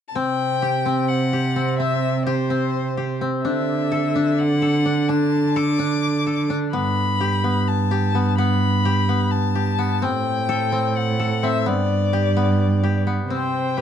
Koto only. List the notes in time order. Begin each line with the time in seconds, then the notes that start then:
0.16 C4
0.62 G4
0.86 C4
1.33 G4
1.56 C4
1.80 C4
2.27 G4
2.50 C4
2.97 G4
3.21 C4
3.45 D4
3.92 A4
4.15 D4
4.62 A4
4.86 D4
5.09 D4
5.56 A4
5.79 D4
6.27 A4
6.50 D4
6.73 B3
7.21 G4
7.44 B3
7.91 G4
8.15 B3
8.38 B3
8.85 G4
9.09 B3
9.55 G4
9.79 B3
10.02 C4
10.49 A4
10.72 C4
11.20 A4
11.43 C4
11.66 B3
12.13 G4
12.37 B3
12.84 G4
13.07 B3
13.30 C4
13.77 G4